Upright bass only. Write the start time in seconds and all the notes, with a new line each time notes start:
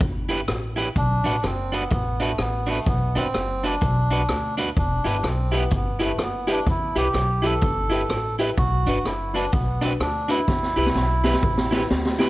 0.01 G1
0.48 A1
0.96 B1
1.25 A1
1.44 F#1
1.91 A1
2.39 A1
2.87 B1
3.15 G1
3.34 F#1
3.82 B1
4.29 D2
4.77 E1
5.04 G1
5.23 B1
5.72 G1
6.18 F#1
6.66 E2
6.95 C2
7.14 B1
7.62 G1
8.09 A1
8.57 B1
8.86 G1
9.04 F#1
9.53 B1
10.00 D2
10.48 E2
10.77 C2
10.95 B1
11.43 A1
11.91 D2